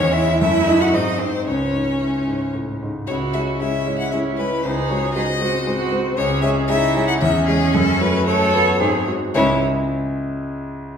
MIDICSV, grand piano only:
0, 0, Header, 1, 2, 480
1, 0, Start_track
1, 0, Key_signature, 4, "minor"
1, 0, Tempo, 531444
1, 1323, Time_signature, 3, 2, 24, 8
1, 3254, Tempo, 518135
1, 7574, Tempo, 535236
1, 10003, End_track
2, 0, Start_track
2, 0, Title_t, "Grand piano"
2, 0, Program_c, 0, 0
2, 0, Note_on_c, 0, 40, 96
2, 86, Control_c, 0, 64, 127
2, 132, Note_on_c, 0, 64, 74
2, 138, Note_on_c, 0, 73, 76
2, 344, Note_off_c, 0, 64, 0
2, 347, Note_off_c, 0, 73, 0
2, 352, Note_off_c, 0, 40, 0
2, 373, Note_on_c, 0, 42, 94
2, 383, Control_c, 0, 64, 0
2, 545, Control_c, 0, 64, 127
2, 606, Note_on_c, 0, 63, 73
2, 608, Note_on_c, 0, 75, 78
2, 821, Note_off_c, 0, 63, 0
2, 822, Note_off_c, 0, 75, 0
2, 833, Note_off_c, 0, 42, 0
2, 842, Note_on_c, 0, 44, 90
2, 863, Control_c, 0, 64, 0
2, 990, Control_c, 0, 64, 127
2, 1087, Note_on_c, 0, 63, 61
2, 1090, Note_on_c, 0, 72, 67
2, 1301, Note_off_c, 0, 63, 0
2, 1303, Note_off_c, 0, 72, 0
2, 1308, Note_off_c, 0, 44, 0
2, 1326, Note_on_c, 0, 37, 79
2, 1341, Control_c, 0, 64, 0
2, 1517, Control_c, 0, 64, 127
2, 1569, Note_on_c, 0, 44, 58
2, 1813, Note_on_c, 0, 64, 58
2, 1954, Note_off_c, 0, 44, 0
2, 2055, Note_on_c, 0, 44, 58
2, 2198, Note_off_c, 0, 64, 0
2, 2300, Note_on_c, 0, 45, 55
2, 2441, Note_off_c, 0, 44, 0
2, 2540, Note_off_c, 0, 45, 0
2, 2548, Note_on_c, 0, 44, 60
2, 2742, Note_off_c, 0, 37, 0
2, 2783, Note_off_c, 0, 44, 0
2, 2783, Note_on_c, 0, 37, 76
2, 2796, Control_c, 0, 64, 0
2, 2955, Control_c, 0, 64, 127
2, 3012, Note_off_c, 0, 37, 0
2, 3021, Note_on_c, 0, 56, 60
2, 3025, Note_on_c, 0, 64, 59
2, 3029, Note_on_c, 0, 73, 66
2, 3232, Note_off_c, 0, 56, 0
2, 3234, Note_off_c, 0, 64, 0
2, 3236, Note_off_c, 0, 73, 0
2, 3262, Note_on_c, 0, 56, 59
2, 3266, Note_on_c, 0, 64, 61
2, 3269, Note_on_c, 0, 73, 64
2, 3476, Note_off_c, 0, 56, 0
2, 3478, Note_off_c, 0, 64, 0
2, 3480, Note_off_c, 0, 73, 0
2, 3501, Note_on_c, 0, 56, 61
2, 3508, Note_on_c, 0, 64, 58
2, 3511, Note_on_c, 0, 73, 69
2, 3717, Note_off_c, 0, 56, 0
2, 3720, Note_off_c, 0, 64, 0
2, 3722, Note_off_c, 0, 73, 0
2, 3745, Note_on_c, 0, 56, 64
2, 3751, Note_on_c, 0, 64, 62
2, 3755, Note_on_c, 0, 73, 65
2, 3959, Note_off_c, 0, 56, 0
2, 3962, Note_off_c, 0, 64, 0
2, 3964, Note_off_c, 0, 73, 0
2, 3989, Note_on_c, 0, 56, 62
2, 3993, Note_on_c, 0, 64, 62
2, 3995, Note_on_c, 0, 73, 67
2, 4200, Note_off_c, 0, 56, 0
2, 4202, Note_off_c, 0, 64, 0
2, 4204, Note_off_c, 0, 73, 0
2, 4223, Note_on_c, 0, 37, 86
2, 4238, Control_c, 0, 64, 0
2, 4409, Control_c, 0, 64, 127
2, 4452, Note_off_c, 0, 37, 0
2, 4460, Note_on_c, 0, 56, 65
2, 4465, Note_on_c, 0, 66, 59
2, 4468, Note_on_c, 0, 72, 67
2, 4672, Note_off_c, 0, 56, 0
2, 4675, Note_off_c, 0, 66, 0
2, 4677, Note_off_c, 0, 72, 0
2, 4692, Note_on_c, 0, 56, 67
2, 4697, Note_on_c, 0, 66, 61
2, 4701, Note_on_c, 0, 72, 68
2, 4906, Note_off_c, 0, 56, 0
2, 4909, Note_off_c, 0, 66, 0
2, 4911, Note_off_c, 0, 72, 0
2, 4932, Note_on_c, 0, 56, 65
2, 4933, Note_on_c, 0, 66, 70
2, 4939, Note_on_c, 0, 72, 78
2, 5143, Note_off_c, 0, 56, 0
2, 5144, Note_off_c, 0, 66, 0
2, 5147, Note_off_c, 0, 72, 0
2, 5169, Note_on_c, 0, 56, 68
2, 5170, Note_on_c, 0, 66, 70
2, 5177, Note_on_c, 0, 72, 72
2, 5378, Note_off_c, 0, 56, 0
2, 5380, Note_off_c, 0, 66, 0
2, 5383, Note_off_c, 0, 72, 0
2, 5396, Note_on_c, 0, 56, 67
2, 5403, Note_on_c, 0, 72, 75
2, 5404, Note_on_c, 0, 66, 64
2, 5610, Note_off_c, 0, 56, 0
2, 5614, Note_off_c, 0, 66, 0
2, 5614, Note_off_c, 0, 72, 0
2, 5637, Note_on_c, 0, 37, 98
2, 5652, Control_c, 0, 64, 0
2, 5813, Control_c, 0, 64, 127
2, 5868, Note_off_c, 0, 37, 0
2, 5870, Note_on_c, 0, 56, 72
2, 5876, Note_on_c, 0, 68, 78
2, 5879, Note_on_c, 0, 73, 85
2, 6089, Note_off_c, 0, 56, 0
2, 6093, Note_off_c, 0, 68, 0
2, 6094, Note_off_c, 0, 73, 0
2, 6118, Note_on_c, 0, 56, 75
2, 6119, Note_on_c, 0, 68, 76
2, 6125, Note_on_c, 0, 73, 79
2, 6336, Note_off_c, 0, 56, 0
2, 6336, Note_off_c, 0, 68, 0
2, 6340, Note_off_c, 0, 73, 0
2, 6367, Note_on_c, 0, 56, 82
2, 6370, Note_on_c, 0, 68, 80
2, 6372, Note_on_c, 0, 73, 78
2, 6583, Note_off_c, 0, 56, 0
2, 6584, Note_off_c, 0, 68, 0
2, 6585, Note_off_c, 0, 73, 0
2, 6605, Note_on_c, 0, 40, 103
2, 6620, Control_c, 0, 64, 0
2, 6784, Control_c, 0, 64, 127
2, 6839, Note_off_c, 0, 40, 0
2, 6847, Note_on_c, 0, 56, 77
2, 6853, Note_on_c, 0, 68, 73
2, 6859, Note_on_c, 0, 73, 86
2, 7064, Note_off_c, 0, 56, 0
2, 7067, Note_off_c, 0, 68, 0
2, 7071, Note_off_c, 0, 73, 0
2, 7091, Note_on_c, 0, 42, 105
2, 7103, Control_c, 0, 64, 0
2, 7232, Control_c, 0, 64, 127
2, 7325, Note_off_c, 0, 42, 0
2, 7333, Note_on_c, 0, 57, 77
2, 7335, Note_on_c, 0, 66, 77
2, 7338, Note_on_c, 0, 73, 84
2, 7552, Note_off_c, 0, 57, 0
2, 7553, Note_off_c, 0, 66, 0
2, 7555, Note_off_c, 0, 73, 0
2, 7579, Note_on_c, 0, 57, 78
2, 7583, Note_on_c, 0, 66, 74
2, 7587, Note_on_c, 0, 73, 87
2, 7792, Note_off_c, 0, 57, 0
2, 7794, Note_off_c, 0, 66, 0
2, 7797, Note_off_c, 0, 73, 0
2, 7809, Note_on_c, 0, 57, 71
2, 7814, Note_on_c, 0, 66, 75
2, 7819, Note_on_c, 0, 73, 79
2, 8029, Note_off_c, 0, 57, 0
2, 8032, Note_off_c, 0, 66, 0
2, 8034, Note_off_c, 0, 73, 0
2, 8052, Note_on_c, 0, 44, 90
2, 8073, Control_c, 0, 64, 0
2, 8225, Control_c, 0, 64, 127
2, 8293, Note_off_c, 0, 44, 0
2, 8296, Note_on_c, 0, 56, 62
2, 8301, Note_on_c, 0, 66, 65
2, 8304, Note_on_c, 0, 72, 70
2, 8518, Note_off_c, 0, 56, 0
2, 8521, Note_off_c, 0, 66, 0
2, 8522, Note_off_c, 0, 72, 0
2, 8544, Note_on_c, 0, 37, 92
2, 8544, Note_on_c, 0, 73, 88
2, 8544, Note_on_c, 0, 76, 87
2, 8545, Note_on_c, 0, 64, 90
2, 8546, Note_on_c, 0, 49, 89
2, 8546, Note_on_c, 0, 56, 88
2, 8564, Control_c, 0, 64, 0
2, 8698, Control_c, 0, 64, 127
2, 8810, Note_off_c, 0, 37, 0
2, 8810, Note_off_c, 0, 73, 0
2, 8810, Note_off_c, 0, 76, 0
2, 8811, Note_off_c, 0, 49, 0
2, 8811, Note_off_c, 0, 56, 0
2, 8811, Note_off_c, 0, 64, 0
2, 9993, Control_c, 0, 64, 0
2, 10003, End_track
0, 0, End_of_file